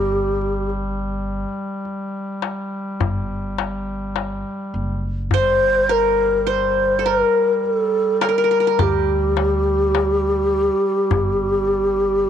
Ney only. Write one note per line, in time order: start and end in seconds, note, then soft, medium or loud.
0.00 0.70 G4 medium
5.34 5.93 C5 loud
5.91 6.50 A#4 loud
6.49 7.10 C5 medium
7.09 7.67 A#4 medium
7.65 8.22 A4 medium
8.23 8.83 A#4 medium
8.81 12.30 G4 medium